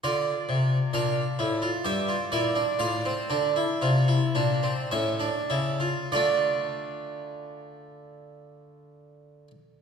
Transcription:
<<
  \new Staff \with { instrumentName = "Harpsichord" } { \time 3/4 \key d \minor \tempo 4 = 55 << { d''4 f''4 e''8 d''8 | f''2 e''4 | <a d' d''>2. | } \\ { f'4 d'8 e'16 f'16 g'16 f'16 e'16 d'16 | f'16 c'16 d'16 e'16 f'16 e'16 d'16 c'16 cis'16 d'16 e'16 f'16 | f'2. | } >> }
  \new Staff \with { instrumentName = "Harpsichord" } { \clef bass \time 3/4 \key d \minor d8 c8 bes,8 a,8 g,8 bes,8 | a,8 d8 c8 bes,8 a,8 cis8 | d2. | }
>>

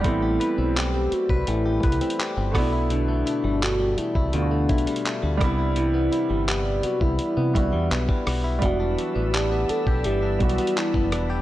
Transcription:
<<
  \new Staff \with { instrumentName = "Analog synth pad" } { \time 4/4 \key a \dorian \tempo 4 = 84 r1 | r1 | r1 | <g d'' b'' e'''>1 | }
  \new Staff \with { instrumentName = "Soft synth lead" } { \time 4/4 \key a \dorian e'4 g'8 fis'8 e'4. r8 | d'4 fis'8 e'8 d'4. r8 | e'4 g'8 fis'16 e'4.~ e'16 r8 | fis'4 g'8 a'8 g'8 fis'8 e'8. r16 | }
  \new Staff \with { instrumentName = "Grand piano" } { \time 4/4 \key a \dorian <g b c' e'>2.~ <g b c' e'>8 <a b d' e'>8~ | <a b d' e'>2 <a b d' f' fis'>4. <g b d' e'>8~ | <g b d' e'>2~ <g b d' e'>8 <g b d' fis'>4. | <g b d' fis''>2~ <g b d' fis''>8 <g b d' fis'>4. | }
  \new Staff \with { instrumentName = "Clean electric guitar" } { \time 4/4 \key a \dorian a16 g'16 b'16 c'16 g'16 c'8 b'16 a16 g'16 b'16 c'16 g'16 c'16 b,16 e'16 | b,16 a16 e'16 g16 a16 g16 a16 e'16 b,16 a16 e'16 g16 a16 g16 c16 e'16 | c16 b16 e'16 g16 b16 g16 b16 e'8 b16 e'16 g16 b16 g16 b16 e'16 | e16 d'8 b16 d'16 b16 d'16 g'16 e16 d'8 b16 d'16 b16 d'16 g'16 | }
  \new Staff \with { instrumentName = "Fingered electric bass" } { \clef bass \time 4/4 \key a \dorian a,,8 r16 b,,8. r16 c,16 a,,8 c,16 r8 g,,16 b,,8~ | b,,8 r16 g,,8. r16 c,16 d,8 b,,16 r8 d,16 c,8~ | c,8 r16 g,,8. r16 c,16 r16 c16 c,16 e,16 b,,16 r16 b,,8 | e,,8 r16 a,,8. r16 b,,16 g,,8 b,,16 r8 fis,,16 e,,8 | }
  \new DrumStaff \with { instrumentName = "Drums" } \drummode { \time 4/4 <hh bd>8 hh8 <hc hh>8 hh16 bd16 hh8 <hh bd>32 hh32 hh32 hh32 <hc hh>8 <hho bd ss>8 | hh8 hh8 <hc hh>8 hh16 bd16 hh8 <hh bd>32 hh32 hh32 hh32 <hc hh>8 <hh bd ss>8 | hh8 hh8 <hc hh>8 hh16 bd16 hh8 <hh bd>8 <hc hh>16 bd16 <hho ss>8 | <hh bd>8 hh8 <hc hh>8 hh16 bd16 hh8 <hh bd>32 hh32 hh32 hh32 <hc hh>16 bd16 <hh ss>8 | }
>>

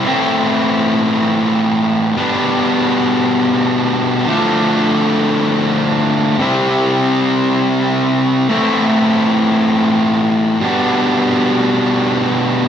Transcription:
\new Staff \with { instrumentName = "Distorted electric guitar" } { \time 6/8 \key a \minor \tempo 4. = 57 <a, e a c' e'>2. | <b, g b d'>2. | <d f a d'>2. | <c g c' e'>2. |
<a, e a c' e'>2. | <b, g b d'>2. | }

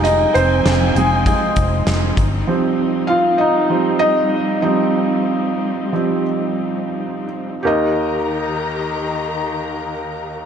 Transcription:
<<
  \new Staff \with { instrumentName = "String section" } { \time 4/4 \key ees \major \tempo 4 = 94 << { <f ees' g'' aes''>2.~ <f ees' g'' aes''>8 g8~ | g1~ | g1 | <ees ees' g' bes' bes''>1 | } \\ { c'1~ | c'1~ | c'1 | r1 | } >> }
  \new Staff \with { instrumentName = "Felt piano" } { \time 4/4 \key ees \major <ees' ees''>8 <c' c''>4 <aes aes'>8 <aes aes'>4. r8 | r4 <f' f''>8 <ees' ees''>4 <ees' ees''>4 <ees' ees''>8~ | <ees' ees''>2.~ <ees' ees''>8 r8 | <g' bes' ees''>1 | }
  \new Staff \with { instrumentName = "Felt piano" } { \clef bass \time 4/4 \key ees \major <g aes ees'>8 r2. r8 | <f g c'>4. r8 <f g c'>8 r4 <f g c'>8~ | <f g c'>4. <f g c'>8 r2 | ees,1 | }
  \new Staff \with { instrumentName = "Fingered electric bass" } { \clef bass \time 4/4 \key ees \major f,,8 f,,8 f,,8 f,,8. r16 f,,8 f,,8 g,,8 | r1 | r1 | r1 | }
  \new DrumStaff \with { instrumentName = "Drums" } \drummode { \time 4/4 hh8 hh8 <hh sn>8 hh8 <hh bd>8 <hh bd>8 <hh sn>8 <hh bd>8 | r4 r4 r4 r4 | r4 r4 r4 r4 | r4 r4 r4 r4 | }
>>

